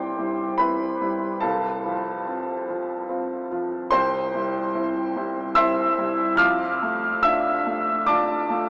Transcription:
0.00 1.39 C2 soft
0.00 0.19 G3 soft
0.00 0.14 C4 soft
0.00 0.19 E4 soft
0.00 0.56 C5 soft
0.00 1.45 D5 medium
0.00 1.45 G5 medium
0.00 0.59 C6 medium
0.00 1.45 D6 medium
0.19 0.56 G3 soft
0.19 0.56 E4 soft
0.58 0.98 C4 soft
0.58 0.98 E4 soft
0.58 1.39 B4 medium
0.58 1.42 B5 medium
1.01 1.39 G3 soft
1.01 1.39 E4 soft
1.40 3.89 C2 medium
1.40 3.06 A4 medium
1.40 3.06 F5 medium
1.40 3.09 A5 medium
1.85 2.23 F3 soft
1.85 2.23 F4 soft
2.27 2.65 C4 soft
2.27 2.65 F4 soft
2.68 3.06 F3 soft
2.68 3.06 F4 soft
3.09 3.47 C4 soft
3.09 3.47 F4 soft
3.51 3.89 F3 soft
3.51 3.89 F4 soft
3.90 6.35 C2 medium
3.90 5.52 C5 medium
3.90 5.53 G5 medium
3.90 5.55 C6 medium
4.34 4.71 G3 soft
4.34 4.71 E4 soft
4.75 5.12 C4 soft
4.75 5.12 E4 medium
5.16 5.53 G3 soft
5.16 5.54 E4 medium
5.55 5.94 C4 soft
5.55 5.95 E4 medium
5.55 6.35 E5 medium
5.55 6.35 C6 medium
5.55 6.39 E6 medium
5.98 6.36 G3 soft
5.98 6.36 E4 medium
6.35 8.69 F2 medium
6.35 7.20 F5 medium
6.35 7.20 D6 medium
6.35 7.23 F6 medium
6.82 7.21 A3 soft
6.82 7.21 F4 medium
7.23 7.62 D4 soft
7.23 7.63 F4 medium
7.23 8.04 E5 medium
7.23 8.07 E6 medium
7.66 8.04 A3 soft
7.66 8.04 F4 medium
8.06 8.47 D4 soft
8.06 8.47 F4 medium
8.06 8.69 D5 medium
8.06 8.69 A5 medium
8.06 8.69 D6 medium
8.49 8.69 A3 medium
8.49 8.69 F4 medium

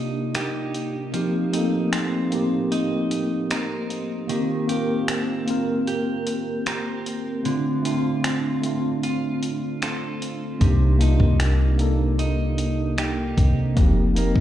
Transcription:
0.00 1.14 C3 medium
0.00 0.34 A#3 medium
0.00 1.12 A#3 medium
0.00 1.16 D4 medium
0.00 0.35 D#4 medium
0.00 1.15 D#4 medium
0.00 0.63 F4 medium
0.00 1.16 G4 medium
0.35 1.92 A#3 medium
0.35 1.53 D#4 medium
0.35 1.22 G4 medium
0.35 finger snap loud
0.35 closed hi-hat medium
0.74 closed hi-hat medium
1.12 4.29 F3 medium
1.12 1.49 A#3 medium
1.12 1.50 C4 medium
1.12 1.51 D#4 medium
1.12 closed hi-hat medium
1.16 1.51 G4 medium
1.51 1.59 A3 medium
1.51 2.25 C4 medium
1.51 2.71 D#4 medium
1.51 2.26 D#4 medium
1.51 closed hi-hat medium
1.55 2.28 A#3 medium
1.55 2.27 A4 medium
1.93 3.50 C4 medium
1.93 finger snap loud
1.93 closed hi-hat medium
2.30 3.77 A#3 medium
2.30 3.77 C4 medium
2.30 3.78 D#4 medium
2.30 closed hi-hat medium
2.35 3.79 G4 medium
2.72 3.51 D#4 medium
2.72 closed hi-hat medium
3.11 closed hi-hat medium
3.51 5.08 C4 medium
3.51 4.69 D#4 medium
3.51 5.12 A#4 medium
3.51 finger snap loud
3.51 closed hi-hat medium
3.90 closed hi-hat medium
4.27 7.45 D#3 medium
4.27 4.65 A#3 medium
4.27 4.66 C4 medium
4.27 4.66 F4 medium
4.27 closed hi-hat medium
4.32 4.67 G4 medium
4.67 5.41 A#3 medium
4.67 5.41 C4 medium
4.67 5.42 F4 medium
4.67 5.86 G4 medium
4.67 closed hi-hat medium
4.72 5.43 A#4 medium
5.08 6.66 C4 medium
5.08 finger snap loud
5.08 closed hi-hat medium
5.46 6.92 A#3 medium
5.46 6.93 C4 medium
5.46 6.94 F4 medium
5.46 closed hi-hat medium
5.50 6.95 A#4 medium
5.87 6.66 G4 medium
5.87 closed hi-hat medium
6.27 closed hi-hat medium
6.66 8.24 C4 medium
6.66 7.54 G4 medium
6.66 7.54 A#4 medium
6.66 finger snap loud
6.66 closed hi-hat medium
7.06 closed hi-hat medium
7.43 10.61 D3 medium
7.43 7.81 A3 medium
7.43 7.81 C4 medium
7.43 7.82 D4 medium
7.43 closed hi-hat medium
7.48 7.83 F4 medium
7.83 8.56 A3 medium
7.83 8.57 C4 medium
7.83 8.58 D4 medium
7.83 9.02 F4 medium
7.83 closed hi-hat medium
7.87 8.59 F4 medium
8.24 9.82 C4 medium
8.24 finger snap loud
8.24 closed hi-hat medium
8.61 10.08 A3 medium
8.61 10.09 C4 medium
8.61 10.10 D4 medium
8.61 closed hi-hat medium
8.66 10.10 F4 medium
9.03 9.82 F4 medium
9.03 closed hi-hat medium
9.43 closed hi-hat medium
9.82 11.40 C4 medium
9.82 10.69 F4 medium
9.82 10.70 A4 medium
9.82 finger snap loud
9.82 closed hi-hat medium
10.22 closed hi-hat medium
10.59 11.18 C2 loud
10.59 13.77 C3 medium
10.59 10.96 A#3 medium
10.59 10.97 D4 medium
10.59 10.98 D#4 medium
10.59 kick loud
10.59 closed hi-hat medium
10.63 10.99 G4 medium
10.98 11.72 A#3 medium
10.98 11.73 D4 medium
10.98 12.19 D#4 medium
10.98 11.74 D#4 medium
10.98 closed hi-hat medium
11.03 11.74 F4 medium
11.20 13.33 C2 loud
11.20 kick medium
11.40 12.97 A#3 medium
11.40 finger snap loud
11.40 closed hi-hat medium
11.77 13.24 A#3 medium
11.77 13.25 D4 medium
11.77 13.25 D#4 medium
11.77 closed hi-hat medium
11.82 13.26 A4 medium
12.19 12.98 D#4 medium
12.19 closed hi-hat medium
12.58 closed hi-hat medium
12.98 14.16 A#3 medium
12.98 14.40 D#4 medium
12.98 13.85 G4 medium
12.98 finger snap loud
12.98 closed hi-hat medium
13.38 13.75 C3 loud
13.38 kick medium
13.38 closed hi-hat medium
13.75 14.34 F1 loud
13.75 14.40 F2 medium
13.75 14.12 A#3 medium
13.75 14.13 C4 medium
13.75 14.14 D#4 medium
13.75 kick loud
13.75 closed hi-hat medium
13.79 14.14 G4 medium
14.14 14.40 A#3 medium
14.14 14.40 C4 medium
14.14 14.40 D#4 medium
14.14 closed hi-hat medium
14.19 14.40 A#4 loud
14.36 14.40 F1 loud
14.36 kick medium

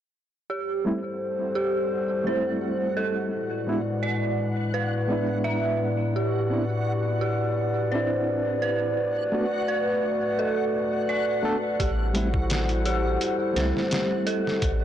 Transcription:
0.49 3.30 G3 medium
0.49 8.93 E4 medium
0.49 14.85 F#4 medium
0.49 1.53 G4 medium
0.49 3.30 A4 medium
0.49 3.30 C5 medium
0.49 14.85 F#5 medium
0.85 0.97 G3 medium
0.85 0.97 A3 medium
0.85 0.98 C4 medium
0.85 0.98 E4 medium
1.55 1.90 G4 medium
2.24 3.30 G3 medium
2.24 3.30 A3 medium
2.24 3.31 C4 medium
2.24 2.48 C5 medium
2.29 3.32 E4 medium
2.97 3.31 A4 medium
3.31 8.93 A2 medium
3.31 6.12 G#3 medium
3.31 11.75 B4 medium
3.31 11.75 D5 medium
3.67 3.79 G#3 medium
3.67 3.80 B3 medium
3.67 3.80 D4 medium
3.67 3.80 E4 medium
4.03 4.37 D5 medium
4.74 5.41 B4 medium
5.07 6.12 G#3 medium
5.07 6.13 B3 medium
5.07 6.14 D4 medium
5.12 6.15 E4 medium
5.44 5.78 E5 medium
6.16 7.18 G4 medium
6.50 6.62 B3 medium
6.50 6.63 C4 medium
6.50 6.63 D4 medium
6.50 6.63 E4 medium
7.21 7.55 G4 medium
7.92 8.96 C4 medium
7.92 8.97 D4 medium
7.92 8.98 E4 medium
7.92 8.13 C5 medium
8.62 8.96 B4 medium
8.98 11.77 A3 medium
8.98 11.77 F#4 medium
9.32 9.44 A3 medium
9.32 9.45 B3 medium
9.32 9.45 D4 medium
9.32 9.45 F#4 medium
9.68 10.02 B4 medium
10.39 11.06 A4 medium
11.09 11.43 D5 medium
11.43 11.56 A3 medium
11.43 11.56 B3 medium
11.43 11.56 D4 medium
11.43 11.57 A4 medium
11.79 13.18 A1 medium
11.79 14.59 G3 medium
11.79 14.59 E4 medium
11.79 12.83 G4 medium
11.79 14.59 A4 medium
11.79 14.59 C5 medium
11.79 kick medium
11.79 closed hi-hat medium
12.14 12.26 G3 medium
12.14 12.27 A3 medium
12.14 12.27 C4 medium
12.14 12.28 E4 medium
12.14 closed hi-hat medium
12.34 kick medium
12.50 snare loud
12.50 closed hi-hat medium
12.69 closed hi-hat soft
12.86 13.20 G4 medium
12.86 closed hi-hat medium
13.21 closed hi-hat medium
13.53 13.73 C2 loud
13.53 14.59 G3 medium
13.53 14.60 A3 medium
13.53 14.60 C4 medium
13.53 13.78 C5 medium
13.53 closed hi-hat medium
13.58 14.61 E4 medium
13.58 snare soft
13.77 snare soft
13.91 snare loud
13.91 closed hi-hat medium
14.27 14.60 A4 medium
14.27 closed hi-hat medium
14.47 snare soft
14.61 14.85 A1 medium
14.61 14.85 G#3 medium
14.61 14.85 E4 medium
14.61 14.85 B4 medium
14.61 14.85 D5 medium
14.61 kick medium
14.61 closed hi-hat medium

